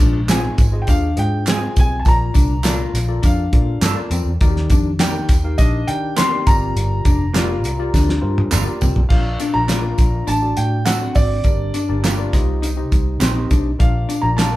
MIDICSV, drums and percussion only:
0, 0, Header, 1, 2, 480
1, 0, Start_track
1, 0, Key_signature, -2, "major"
1, 0, Tempo, 587084
1, 1682, Time_signature, 4, 2, 24, 8
1, 11908, End_track
2, 0, Start_track
2, 0, Title_t, "Drums"
2, 0, Note_on_c, 9, 36, 99
2, 0, Note_on_c, 9, 42, 64
2, 79, Note_off_c, 9, 36, 0
2, 82, Note_off_c, 9, 42, 0
2, 238, Note_on_c, 9, 42, 83
2, 239, Note_on_c, 9, 39, 85
2, 239, Note_on_c, 9, 54, 87
2, 241, Note_on_c, 9, 38, 96
2, 320, Note_off_c, 9, 39, 0
2, 320, Note_off_c, 9, 42, 0
2, 320, Note_off_c, 9, 54, 0
2, 322, Note_off_c, 9, 38, 0
2, 475, Note_on_c, 9, 42, 81
2, 477, Note_on_c, 9, 36, 98
2, 480, Note_on_c, 9, 54, 51
2, 557, Note_off_c, 9, 42, 0
2, 559, Note_off_c, 9, 36, 0
2, 562, Note_off_c, 9, 54, 0
2, 712, Note_on_c, 9, 42, 66
2, 719, Note_on_c, 9, 36, 87
2, 720, Note_on_c, 9, 54, 59
2, 794, Note_off_c, 9, 42, 0
2, 801, Note_off_c, 9, 36, 0
2, 802, Note_off_c, 9, 54, 0
2, 956, Note_on_c, 9, 42, 60
2, 1038, Note_off_c, 9, 42, 0
2, 1201, Note_on_c, 9, 39, 93
2, 1201, Note_on_c, 9, 54, 96
2, 1205, Note_on_c, 9, 42, 92
2, 1210, Note_on_c, 9, 38, 98
2, 1282, Note_off_c, 9, 39, 0
2, 1282, Note_off_c, 9, 54, 0
2, 1287, Note_off_c, 9, 42, 0
2, 1292, Note_off_c, 9, 38, 0
2, 1441, Note_on_c, 9, 54, 59
2, 1445, Note_on_c, 9, 42, 68
2, 1446, Note_on_c, 9, 36, 99
2, 1523, Note_off_c, 9, 54, 0
2, 1526, Note_off_c, 9, 42, 0
2, 1528, Note_off_c, 9, 36, 0
2, 1676, Note_on_c, 9, 54, 35
2, 1684, Note_on_c, 9, 36, 94
2, 1688, Note_on_c, 9, 42, 65
2, 1758, Note_off_c, 9, 54, 0
2, 1765, Note_off_c, 9, 36, 0
2, 1770, Note_off_c, 9, 42, 0
2, 1917, Note_on_c, 9, 54, 61
2, 1924, Note_on_c, 9, 36, 94
2, 1929, Note_on_c, 9, 42, 76
2, 1999, Note_off_c, 9, 54, 0
2, 2006, Note_off_c, 9, 36, 0
2, 2011, Note_off_c, 9, 42, 0
2, 2160, Note_on_c, 9, 39, 87
2, 2160, Note_on_c, 9, 54, 88
2, 2167, Note_on_c, 9, 42, 80
2, 2170, Note_on_c, 9, 38, 85
2, 2242, Note_off_c, 9, 39, 0
2, 2242, Note_off_c, 9, 54, 0
2, 2249, Note_off_c, 9, 42, 0
2, 2251, Note_off_c, 9, 38, 0
2, 2411, Note_on_c, 9, 38, 33
2, 2411, Note_on_c, 9, 42, 83
2, 2411, Note_on_c, 9, 54, 54
2, 2492, Note_off_c, 9, 54, 0
2, 2493, Note_off_c, 9, 38, 0
2, 2493, Note_off_c, 9, 42, 0
2, 2642, Note_on_c, 9, 42, 76
2, 2647, Note_on_c, 9, 36, 86
2, 2647, Note_on_c, 9, 54, 58
2, 2723, Note_off_c, 9, 42, 0
2, 2728, Note_off_c, 9, 36, 0
2, 2729, Note_off_c, 9, 54, 0
2, 2884, Note_on_c, 9, 42, 65
2, 2885, Note_on_c, 9, 36, 92
2, 2966, Note_off_c, 9, 42, 0
2, 2967, Note_off_c, 9, 36, 0
2, 3119, Note_on_c, 9, 42, 81
2, 3124, Note_on_c, 9, 38, 89
2, 3126, Note_on_c, 9, 39, 91
2, 3126, Note_on_c, 9, 54, 96
2, 3201, Note_off_c, 9, 42, 0
2, 3206, Note_off_c, 9, 38, 0
2, 3208, Note_off_c, 9, 39, 0
2, 3208, Note_off_c, 9, 54, 0
2, 3359, Note_on_c, 9, 42, 69
2, 3365, Note_on_c, 9, 54, 62
2, 3441, Note_off_c, 9, 42, 0
2, 3447, Note_off_c, 9, 54, 0
2, 3603, Note_on_c, 9, 42, 68
2, 3607, Note_on_c, 9, 36, 106
2, 3611, Note_on_c, 9, 54, 36
2, 3684, Note_off_c, 9, 42, 0
2, 3688, Note_off_c, 9, 36, 0
2, 3692, Note_off_c, 9, 54, 0
2, 3733, Note_on_c, 9, 38, 33
2, 3815, Note_off_c, 9, 38, 0
2, 3840, Note_on_c, 9, 42, 73
2, 3845, Note_on_c, 9, 36, 102
2, 3848, Note_on_c, 9, 54, 56
2, 3921, Note_off_c, 9, 42, 0
2, 3927, Note_off_c, 9, 36, 0
2, 3929, Note_off_c, 9, 54, 0
2, 4082, Note_on_c, 9, 42, 75
2, 4084, Note_on_c, 9, 38, 100
2, 4089, Note_on_c, 9, 39, 84
2, 4089, Note_on_c, 9, 54, 83
2, 4163, Note_off_c, 9, 42, 0
2, 4166, Note_off_c, 9, 38, 0
2, 4171, Note_off_c, 9, 39, 0
2, 4171, Note_off_c, 9, 54, 0
2, 4323, Note_on_c, 9, 38, 35
2, 4323, Note_on_c, 9, 42, 87
2, 4326, Note_on_c, 9, 36, 98
2, 4327, Note_on_c, 9, 54, 53
2, 4405, Note_off_c, 9, 38, 0
2, 4405, Note_off_c, 9, 42, 0
2, 4408, Note_off_c, 9, 36, 0
2, 4409, Note_off_c, 9, 54, 0
2, 4564, Note_on_c, 9, 54, 62
2, 4565, Note_on_c, 9, 42, 78
2, 4570, Note_on_c, 9, 36, 84
2, 4646, Note_off_c, 9, 54, 0
2, 4647, Note_off_c, 9, 42, 0
2, 4651, Note_off_c, 9, 36, 0
2, 4807, Note_on_c, 9, 42, 63
2, 4888, Note_off_c, 9, 42, 0
2, 5049, Note_on_c, 9, 39, 101
2, 5049, Note_on_c, 9, 54, 92
2, 5051, Note_on_c, 9, 42, 95
2, 5056, Note_on_c, 9, 38, 91
2, 5130, Note_off_c, 9, 39, 0
2, 5130, Note_off_c, 9, 54, 0
2, 5133, Note_off_c, 9, 42, 0
2, 5137, Note_off_c, 9, 38, 0
2, 5287, Note_on_c, 9, 54, 57
2, 5288, Note_on_c, 9, 42, 82
2, 5289, Note_on_c, 9, 36, 113
2, 5368, Note_off_c, 9, 54, 0
2, 5369, Note_off_c, 9, 42, 0
2, 5371, Note_off_c, 9, 36, 0
2, 5531, Note_on_c, 9, 54, 37
2, 5532, Note_on_c, 9, 42, 69
2, 5613, Note_off_c, 9, 54, 0
2, 5614, Note_off_c, 9, 42, 0
2, 5764, Note_on_c, 9, 42, 71
2, 5767, Note_on_c, 9, 36, 94
2, 5772, Note_on_c, 9, 54, 57
2, 5846, Note_off_c, 9, 42, 0
2, 5849, Note_off_c, 9, 36, 0
2, 5854, Note_off_c, 9, 54, 0
2, 6012, Note_on_c, 9, 39, 88
2, 6012, Note_on_c, 9, 54, 78
2, 6014, Note_on_c, 9, 42, 76
2, 6016, Note_on_c, 9, 38, 85
2, 6094, Note_off_c, 9, 39, 0
2, 6094, Note_off_c, 9, 54, 0
2, 6095, Note_off_c, 9, 42, 0
2, 6098, Note_off_c, 9, 38, 0
2, 6245, Note_on_c, 9, 54, 52
2, 6255, Note_on_c, 9, 42, 84
2, 6327, Note_off_c, 9, 54, 0
2, 6336, Note_off_c, 9, 42, 0
2, 6492, Note_on_c, 9, 36, 80
2, 6494, Note_on_c, 9, 54, 57
2, 6497, Note_on_c, 9, 38, 50
2, 6573, Note_off_c, 9, 36, 0
2, 6575, Note_off_c, 9, 54, 0
2, 6578, Note_off_c, 9, 38, 0
2, 6617, Note_on_c, 9, 38, 53
2, 6699, Note_off_c, 9, 38, 0
2, 6851, Note_on_c, 9, 48, 73
2, 6933, Note_off_c, 9, 48, 0
2, 6965, Note_on_c, 9, 39, 91
2, 6965, Note_on_c, 9, 54, 95
2, 6969, Note_on_c, 9, 47, 72
2, 7046, Note_off_c, 9, 39, 0
2, 7046, Note_off_c, 9, 54, 0
2, 7051, Note_off_c, 9, 47, 0
2, 7204, Note_on_c, 9, 54, 62
2, 7210, Note_on_c, 9, 43, 101
2, 7285, Note_off_c, 9, 54, 0
2, 7292, Note_off_c, 9, 43, 0
2, 7326, Note_on_c, 9, 43, 77
2, 7408, Note_off_c, 9, 43, 0
2, 7441, Note_on_c, 9, 49, 83
2, 7444, Note_on_c, 9, 36, 90
2, 7522, Note_off_c, 9, 49, 0
2, 7526, Note_off_c, 9, 36, 0
2, 7682, Note_on_c, 9, 54, 61
2, 7683, Note_on_c, 9, 42, 70
2, 7763, Note_off_c, 9, 54, 0
2, 7765, Note_off_c, 9, 42, 0
2, 7923, Note_on_c, 9, 42, 72
2, 7924, Note_on_c, 9, 39, 77
2, 7924, Note_on_c, 9, 54, 86
2, 7926, Note_on_c, 9, 38, 87
2, 8005, Note_off_c, 9, 42, 0
2, 8006, Note_off_c, 9, 39, 0
2, 8006, Note_off_c, 9, 54, 0
2, 8008, Note_off_c, 9, 38, 0
2, 8159, Note_on_c, 9, 54, 53
2, 8164, Note_on_c, 9, 36, 96
2, 8164, Note_on_c, 9, 42, 77
2, 8240, Note_off_c, 9, 54, 0
2, 8246, Note_off_c, 9, 36, 0
2, 8246, Note_off_c, 9, 42, 0
2, 8401, Note_on_c, 9, 54, 57
2, 8408, Note_on_c, 9, 42, 72
2, 8483, Note_off_c, 9, 54, 0
2, 8490, Note_off_c, 9, 42, 0
2, 8639, Note_on_c, 9, 42, 64
2, 8640, Note_on_c, 9, 54, 35
2, 8721, Note_off_c, 9, 42, 0
2, 8722, Note_off_c, 9, 54, 0
2, 8882, Note_on_c, 9, 42, 88
2, 8883, Note_on_c, 9, 39, 93
2, 8883, Note_on_c, 9, 54, 92
2, 8886, Note_on_c, 9, 38, 91
2, 8963, Note_off_c, 9, 42, 0
2, 8965, Note_off_c, 9, 39, 0
2, 8965, Note_off_c, 9, 54, 0
2, 8968, Note_off_c, 9, 38, 0
2, 9114, Note_on_c, 9, 46, 54
2, 9123, Note_on_c, 9, 36, 96
2, 9124, Note_on_c, 9, 54, 57
2, 9196, Note_off_c, 9, 46, 0
2, 9205, Note_off_c, 9, 36, 0
2, 9205, Note_off_c, 9, 54, 0
2, 9352, Note_on_c, 9, 42, 66
2, 9358, Note_on_c, 9, 36, 86
2, 9361, Note_on_c, 9, 54, 37
2, 9434, Note_off_c, 9, 42, 0
2, 9440, Note_off_c, 9, 36, 0
2, 9443, Note_off_c, 9, 54, 0
2, 9599, Note_on_c, 9, 42, 75
2, 9606, Note_on_c, 9, 54, 56
2, 9680, Note_off_c, 9, 42, 0
2, 9687, Note_off_c, 9, 54, 0
2, 9845, Note_on_c, 9, 42, 74
2, 9848, Note_on_c, 9, 38, 84
2, 9849, Note_on_c, 9, 39, 79
2, 9849, Note_on_c, 9, 54, 77
2, 9927, Note_off_c, 9, 42, 0
2, 9930, Note_off_c, 9, 38, 0
2, 9931, Note_off_c, 9, 39, 0
2, 9931, Note_off_c, 9, 54, 0
2, 10084, Note_on_c, 9, 36, 100
2, 10085, Note_on_c, 9, 54, 51
2, 10091, Note_on_c, 9, 38, 32
2, 10091, Note_on_c, 9, 42, 81
2, 10165, Note_off_c, 9, 36, 0
2, 10167, Note_off_c, 9, 54, 0
2, 10173, Note_off_c, 9, 38, 0
2, 10173, Note_off_c, 9, 42, 0
2, 10327, Note_on_c, 9, 42, 78
2, 10331, Note_on_c, 9, 54, 59
2, 10409, Note_off_c, 9, 42, 0
2, 10413, Note_off_c, 9, 54, 0
2, 10562, Note_on_c, 9, 54, 32
2, 10565, Note_on_c, 9, 36, 92
2, 10569, Note_on_c, 9, 42, 62
2, 10644, Note_off_c, 9, 54, 0
2, 10647, Note_off_c, 9, 36, 0
2, 10651, Note_off_c, 9, 42, 0
2, 10802, Note_on_c, 9, 39, 86
2, 10802, Note_on_c, 9, 54, 99
2, 10805, Note_on_c, 9, 42, 85
2, 10810, Note_on_c, 9, 38, 91
2, 10883, Note_off_c, 9, 39, 0
2, 10883, Note_off_c, 9, 54, 0
2, 10887, Note_off_c, 9, 42, 0
2, 10892, Note_off_c, 9, 38, 0
2, 11043, Note_on_c, 9, 54, 55
2, 11045, Note_on_c, 9, 36, 99
2, 11045, Note_on_c, 9, 42, 70
2, 11124, Note_off_c, 9, 54, 0
2, 11126, Note_off_c, 9, 42, 0
2, 11127, Note_off_c, 9, 36, 0
2, 11280, Note_on_c, 9, 54, 34
2, 11283, Note_on_c, 9, 36, 95
2, 11287, Note_on_c, 9, 42, 73
2, 11362, Note_off_c, 9, 54, 0
2, 11365, Note_off_c, 9, 36, 0
2, 11368, Note_off_c, 9, 42, 0
2, 11525, Note_on_c, 9, 42, 67
2, 11526, Note_on_c, 9, 54, 57
2, 11607, Note_off_c, 9, 42, 0
2, 11608, Note_off_c, 9, 54, 0
2, 11763, Note_on_c, 9, 42, 72
2, 11765, Note_on_c, 9, 39, 78
2, 11765, Note_on_c, 9, 54, 88
2, 11766, Note_on_c, 9, 38, 87
2, 11845, Note_off_c, 9, 42, 0
2, 11846, Note_off_c, 9, 39, 0
2, 11846, Note_off_c, 9, 54, 0
2, 11847, Note_off_c, 9, 38, 0
2, 11908, End_track
0, 0, End_of_file